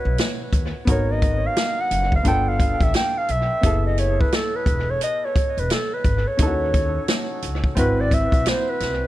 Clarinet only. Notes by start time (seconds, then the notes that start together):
Already playing: B4
0.91 C#5
1.12 D#5
1.47 F5
1.81 F#5
2.16 F5
2.28 G5
2.49 F5
2.83 E5
2.96 G5
3.18 F5
3.31 E5
3.87 D#5
4.00 C#5
4.21 B4
4.35 A4
4.56 B4
4.91 C#5
5.04 D#5
5.25 C#5
5.59 B4
5.72 A4
5.94 B4
6.28 C#5
7.79 B4
8.01 D5
8.14 E5
8.48 C5
8.70 B4